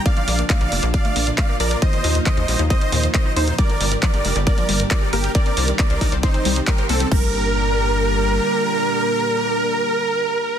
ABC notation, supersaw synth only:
X:1
M:4/4
L:1/8
Q:1/4=136
K:Gm
V:1 name="Supersaw synth"
[df]2 [df]2 [df]2 [df] [Bd] | [ce]2 [ce]2 [ce]2 [ce] [Ec] | [Bd]2 [Bd]2 [Bd]2 [Bd] [GB] | [Bd]2 [Bd]2 [Ec]2 [GB] [CA] |
B8- | B8 |]